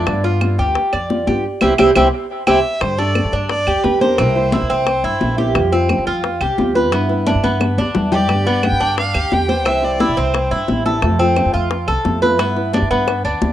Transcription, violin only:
2.48 E5
2.81 C5
2.99 D5
3.50 D5
3.84 B4
4.01 A#4
4.35 C5
4.70 C5
8.13 D5
8.64 G5
8.99 F5
9.33 G5
9.68 E5
9.85 D5
10.19 C5

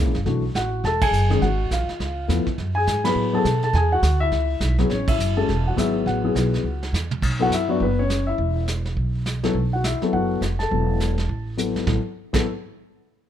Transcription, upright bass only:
0.06 A#1
0.16 F#1
0.26 B1
0.55 A1
0.84 E1
1.11 F#1
1.42 G#1
1.71 A#1
1.88 muted upright bass stroke
2.00 C#2
2.28 E2
2.46 muted upright bass stroke
2.58 F#2
2.87 G#2
3.15 A2
3.45 B2
3.73 E2
4.02 D2
4.31 C#2
4.60 B1
4.89 A1
5.18 F#1
5.48 E1
5.77 G#1
6.06 A1
6.35 B1
6.63 C#2
6.93 E2
7.22 B1
7.49 F#2
7.80 F#1
8.38 E1
8.96 B1
9.55 B1
10.01 muted upright bass stroke
10.13 F#1
10.41 F1
10.71 E1
11.29 A1
11.75 G#1
11.87 A1
12.34 A1

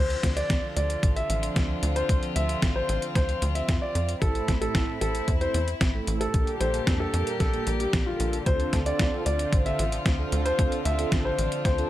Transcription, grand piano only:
Already playing: C5
0.37 D5
0.76 D5
1.16 E5
1.96 C5
2.36 E5
2.76 C5
3.15 C5
3.55 E5
3.82 D5
4.22 A4
4.61 A4
5.01 A4
5.41 C5
6.21 A4
6.60 C5
7.00 A4
7.40 A4
7.80 G4
8.06 F4
8.46 C5
8.86 D5
9.26 D5
9.66 E5
10.45 C5
10.85 E5
11.25 C5
11.65 C5

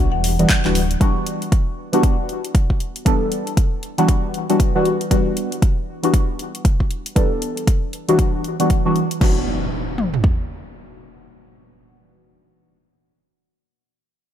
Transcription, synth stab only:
Already playing: E3 G3 B3 D4 F#4
0.39 E3 G3 B3 D4 F#4
0.65 E3 G3 B3 D4 F#4
1.00 E3 G3 B3 D4 F#4
1.93 E3 G3 B3 D4 F#4
3.05 E3 G3 B3 D4 A4
3.98 E3 G3 B3 D4 F#4
4.49 E3 G3 B3 D4 F#4
4.75 E3 G3 B3 D4 F#4
5.10 E3 G3 B3 D4 F#4
6.03 E3 G3 B3 D4 F#4
7.15 E3 G3 B3 D4 A4
8.08 E3 G3 B3 D4 F#4
8.59 E3 G3 B3 D4 F#4
8.85 E3 G3 B3 D4 F#4
9.20 E3 G3 B3 D4 F#4

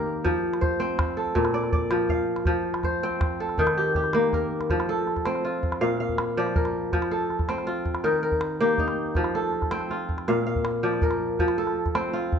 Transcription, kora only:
Already playing: D#3 A#3 C4 G4 A#4
0.24 F3
0.61 C5
0.80 C4
1.17 A4
1.35 A#2
1.54 D5
1.73 D5
1.91 F3
2.10 F5
2.47 F3
2.84 C5
3.03 C4
3.40 A4
3.59 D#3
3.77 G4
3.96 G4
4.14 A#3
4.34 A#4
4.70 F3
4.89 A4
5.26 C4
5.45 F4
5.81 A#2 F5
6.00 F5
6.37 F3 D5
6.56 A#4
6.93 F3
7.11 A4
7.49 C4
7.67 F4
8.04 D#3 A#4
8.23 A#4
8.60 A#3 G4
8.79 D#4
9.16 F3
9.35 A4
9.72 C4
9.91 F4
10.28 A#2 F5
10.47 F5
10.83 F3 D5
11.03 A#4
11.40 F3
11.58 A4
11.95 C4
12.13 F4

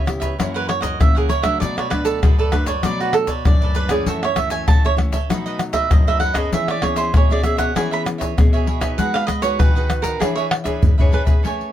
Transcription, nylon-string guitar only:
Already playing: C#3
0.08 B3 E4 G4
0.39 F#2 E3 A#3 C#4
1.00 C#3 E3 A#3 C#4
1.44 F#3 A3 D4
1.63 B2
1.92 F#3 A3 D4
2.24 F#2
2.53 F#3 A3 D4
2.84 B2 F#3 A3 D4
3.47 F#2 F#3 A3 D4
3.89 E3 A3 C#4
4.07 F#2
4.38 E3 A3 C#4
4.68 C#3
4.96 E3 A3 C#4
5.29 B2 F#3 A3 D#4
5.90 F#2 F#3 A3 D#4
6.34 B3 C#4 G#4
6.53 E3
6.82 B3 C#4 G#4
7.14 B2
7.30 B3 C#4 G#4
7.44 B3 C#4 G#4
7.76 E3 B3 C#4 G#4
8.37 B2 B3 C#4 G#4
8.81 D#4 F#4 B4
8.99 G#3
9.43 D#4 F#4 B4
9.60 D#3
9.76 D#4 F#4 B4
10.20 E3 D4 G#4 C#5
10.65 D4 G#4 C#5
10.84 B2
10.99 D4 G#4 C#5
11.27 C#4 G#4 B4
11.44 A3

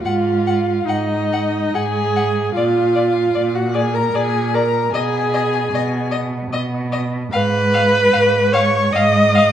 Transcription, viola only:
0.03 F4
0.86 D#4
1.74 G#4
2.55 F4
3.55 F#4
3.74 G#4
3.94 A#4
4.15 G#4
4.54 A#4
4.92 G#4
7.32 B4
8.53 C#5
8.92 D#5

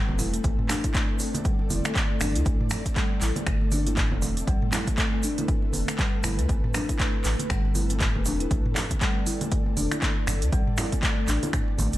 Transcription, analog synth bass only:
0.08 E1
0.44 A1
1.70 E1
2.21 G1
2.35 D2
2.46 A1
3.22 A1
3.47 G1
4.12 E1
4.47 A1
5.74 E1
6.24 G1
6.39 D2
6.49 A1
7.25 A1
7.50 G1
8.15 E1
8.51 A1
9.77 E1
10.27 G1
10.42 D2
10.52 A1
11.28 A1
11.79 A1
11.93 G1

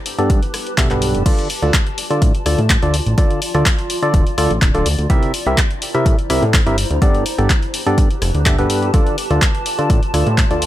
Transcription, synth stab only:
0.19 G2 B3 D4 G4 A4 D5
0.78 G2 B3 D4 G4 A4 E5
0.91 G2 B3 D4 G4 A4 B4
1.26 D3 F4 A4 D5
1.63 D3 F4 A4 D5
2.11 D3 F4 A4 D5
2.46 D3 F4 A4 D5
2.83 D3 F4 A4 D5
3.18 D3 F4 A4 D5
3.55 D3 F4 A4 D5
4.03 D3 F4 A4 D5
4.38 D3 F4 A4 D5
4.75 D3 F4 A4 D5
5.10 C3 C4 E4 G4 A#4 E5
5.47 C3 C4 E4 G4 A#4 E5
5.95 C3 C4 E4 G4 A#4 E5
6.30 C3 C4 E4 G4 A#4 E5
6.67 C4 E4 G4 A#4 E5
7.02 G2 B3 D4 G4 A4 D5
7.38 G2 B3 D4 G4 A4 D5
7.87 G2 B3 D4 G4 A4 D5
8.46 G2 B3 D4 G4 A4 E5
8.59 G2 B3 D4 G4 A4 B4
8.94 D3 F4 A4 D5
9.31 D3 F4 A4 D5
9.79 D3 F4 A4 D5
10.14 D3 F4 A4 D5
10.51 D3 F4 A4 D5

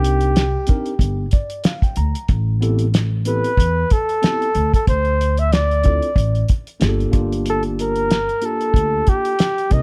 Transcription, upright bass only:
Already playing: C2
0.99 G1
1.97 D2
2.29 A1
3.57 E2
4.55 D2
4.87 D2
6.16 A1
6.81 G1
7.13 G1
8.74 D2
9.71 C2

